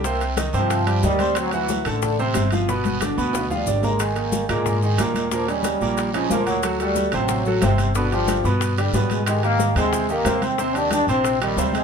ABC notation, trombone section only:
X:1
M:4/4
L:1/8
Q:1/4=182
K:Ablyd
V:1 name="Trombone section" clef=bass
B, z2 F,3 G,2 | ^F, =E,2 D,2 C,2 =B,,- | =B,,4- B,, G,2 A,- | A, B,2 A,3 E, E, |
F, G,4 F, F, ^F,- | ^F, G,2 F,3 C, C, | D, F,2 z2 G,2 A, | A, B,2 A,2 B,2 C- |
C D D C2 G,2 A, |]